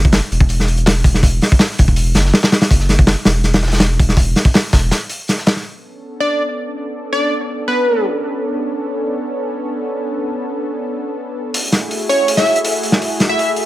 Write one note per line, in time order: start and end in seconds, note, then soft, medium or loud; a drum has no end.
0.00 0.21 F#1 loud
0.05 kick medium
0.13 snare loud
0.13 closed hi-hat medium
0.13 open hi-hat loud
0.31 1.40 E1 medium
0.31 closed hi-hat medium
0.31 open hi-hat medium
0.40 kick loud
0.49 closed hi-hat medium
0.49 open hi-hat medium
0.60 snare soft
0.67 closed hi-hat medium
0.67 open hi-hat medium
0.77 closed hi-hat soft
0.86 snare loud
0.86 closed hi-hat medium
0.86 open hi-hat medium
1.04 kick medium
1.04 closed hi-hat medium
1.04 open hi-hat medium
1.14 snare medium
1.23 kick loud
1.23 closed hi-hat medium
1.23 open hi-hat medium
1.41 snare medium
1.41 open hi-hat medium
1.52 kick loud
1.59 snare loud
1.59 closed hi-hat medium
1.59 open hi-hat medium
1.70 snare soft
1.78 2.14 E1 medium
1.78 kick loud
1.78 closed hi-hat medium
1.78 open hi-hat medium
1.88 kick medium
1.96 closed hi-hat medium
1.96 open hi-hat medium
2.15 2.32 F#1 loud
2.15 snare soft
2.15 snare medium
2.15 closed hi-hat medium
2.15 open hi-hat medium
2.25 snare soft
2.33 snare medium
2.33 closed hi-hat medium
2.33 open hi-hat medium
2.43 snare loud
2.43 open hi-hat medium
2.52 snare loud
2.52 closed hi-hat medium
2.52 open hi-hat medium
2.61 snare loud
2.61 open hi-hat medium
2.70 3.16 F#1 loud
2.70 kick loud
2.70 closed hi-hat medium
2.70 open hi-hat loud
2.80 snare soft
2.89 snare soft
2.89 closed hi-hat medium
2.89 open hi-hat medium
2.99 kick medium
3.07 snare loud
3.07 closed hi-hat medium
3.07 open hi-hat medium
3.25 4.35 E1 medium
3.25 snare loud
3.25 closed hi-hat medium
3.25 open hi-hat medium
3.44 snare soft
3.44 closed hi-hat medium
3.44 open hi-hat medium
3.54 snare soft
3.54 snare loud
3.54 open hi-hat medium
3.63 snare medium
3.63 closed hi-hat medium
3.67 snare medium
3.67 closed hi-hat medium
3.72 snare loud
3.72 snare soft
3.72 closed hi-hat medium
3.72 open hi-hat medium
3.76 snare medium
3.76 closed hi-hat medium
3.80 snare loud
3.80 closed hi-hat loud
3.80 open hi-hat medium
3.99 kick medium
3.99 closed hi-hat medium
3.99 open hi-hat medium
4.09 snare medium
4.17 kick loud
4.17 closed hi-hat medium
4.17 open hi-hat medium
4.35 snare medium
4.35 open hi-hat medium
4.45 kick loud
4.54 snare loud
4.54 closed hi-hat medium
4.54 open hi-hat medium
4.63 snare soft
4.73 4.91 E1 medium
4.73 kick loud
4.73 snare loud
4.73 closed hi-hat medium
4.73 open hi-hat medium
4.91 snare soft
4.91 snare loud
4.91 closed hi-hat medium
4.91 open hi-hat medium
5.09 closed hi-hat medium
5.09 open hi-hat medium
5.28 snare soft
5.28 closed hi-hat medium
5.28 open hi-hat medium
5.38 snare soft
5.47 snare loud
5.47 closed hi-hat medium
5.47 open hi-hat medium
5.56 snare soft
5.65 11.50 B3 medium
5.65 11.50 C#4 medium
5.65 11.50 D4 medium
5.65 11.50 A4 medium
6.20 6.43 D5 medium
7.13 7.35 D5 medium
7.68 8.04 B4 medium
11.54 13.65 A3 medium
11.54 13.65 E4 medium
11.54 13.65 F#4 medium
11.54 13.65 G#4 medium
11.54 open hi-hat medium
11.72 snare soft
11.72 open hi-hat medium
11.91 open hi-hat medium
12.09 12.32 C#5 medium
12.09 open hi-hat medium
12.28 open hi-hat medium
12.37 12.59 E5 medium
12.37 snare soft
12.46 open hi-hat medium
12.56 closed hi-hat soft
12.64 open hi-hat medium
12.83 open hi-hat medium
12.92 snare medium
13.02 open hi-hat medium
13.20 snare soft
13.20 open hi-hat medium
13.29 13.51 E5 medium
13.39 open hi-hat medium
13.56 open hi-hat medium